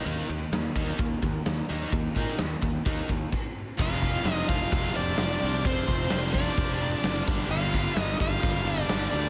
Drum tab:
CC |----------------|------------x---|x---------------|----------------|
RD |x-x-x-x-x-x-x-x-|x-x-x-x-x-x-----|----------------|----------------|
HH |----------------|----------------|----o---o---o---|o---o---o---o---|
SD |----o-------o---|----o-----------|----o-------o---|----o-o-----o---|
BD |------o-o-o-----|o-o---o-o-o-o---|o-o---o-o-------|o-o---o-o-----o-|

CC |x---------------|
RD |----------------|
HH |----o---o---o---|
SD |----o-oo----o---|
BD |--o---o-o-------|